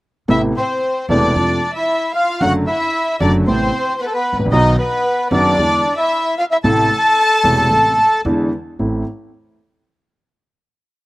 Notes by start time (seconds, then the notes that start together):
0.28 A1 A2 C3 A3 B3 E4 E5
0.57 C4 C5
1.09 E1 E2 C3 A3 B3 D4 E4 D5
1.35 F2 C3 F3 A3 F4
1.74 E4 E5
2.15 F4 F5
2.40 F#1 F#2 D3 F#3 A3 F#4 F#5
2.67 E4 E5
3.20 F#1 F#2 D3 F#3 A3 D4 F#4 D5
3.48 A1 A2 C3 A3 B3 C4 E4 C5
4.00 B3 B4
4.06 A4
4.14 B3 B4
4.33 G#1
4.39 A1
4.46 A#1
4.52 B1 B2 D#3 F#3 B3 D#4 F#4 D#5
4.78 B3 B4
5.31 F#1 F#2 D#3 F#3 B3 D4 F#4 D5
5.58 E2 D3 E3 G#3 B3 E4
5.97 E4 E5
6.38 F4 F5
6.51 E4 E5
6.64 A1 A2 C3 E3 A3 E4 A4 A5
7.44 E1 E2 C3 E3 A3 E4
7.70 A1 A2 C3 E3 A3 E4
8.25 E2 D3 E3 G#3 B3 E4
8.79 A1 A3 C4 E4